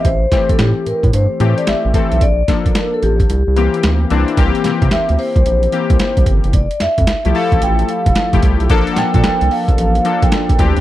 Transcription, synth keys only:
X:1
M:4/4
L:1/16
Q:"Swing 16ths" 1/4=111
K:Cmix
V:1 name="Synth keys"
z2 [E,A,CG]6 z2 [E,A,CG]3 z [E,A,CA]2 | z2 [F,B,DA]6 z2 [E,B,CG]3 z [E,B,CD]2 | [E,B,CG]2 [E,B,CG] [E,B,CG]4- [E,B,CG] z2 [E,B,CG]6 | z4 z [F,A,EG] [F,A,EA]4- [F,A,EA] z2 [F,A,EG]2 z |
[F,B,DA]2 [F,B,DA] [F,B,DA]4- [F,B,DA] z2 [F,B,DA]4 [E,CDG]2 |]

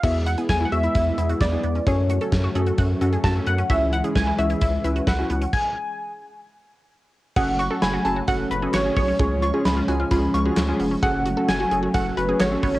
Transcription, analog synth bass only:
X:1
M:4/4
L:1/8
Q:1/4=131
K:F#m
V:1 name="Analog synth bass" clef=bass
E,,2 E,, E,, E,, E,, E,, E,, | F,,2 F,, F,, F,, F,, F,, F,, | C,,2 C,, C,, C,, C,, C,, C,, | z8 |
F,,,2 F,,, F,,, F,,, F,,, G,,, B,,, | C,,2 C,, C,, C,, C,, D,, ^E,,, | F,,,2 F,,, F,,, F,,, F,,, G,,, G,,, |]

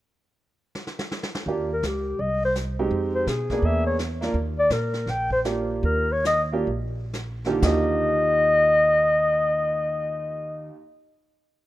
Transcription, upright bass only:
X:1
M:4/4
L:1/8
Q:"Swing" 1/4=162
K:Eb
V:1 name="Upright bass" clef=bass
z8 | E,,2 _D,,2 C,,4 | F,,2 _C,2 =E,,4 | E,,2 B,,2 B,,,4 |
E,,4 B,,,4 | E,,8- | E,,8 |]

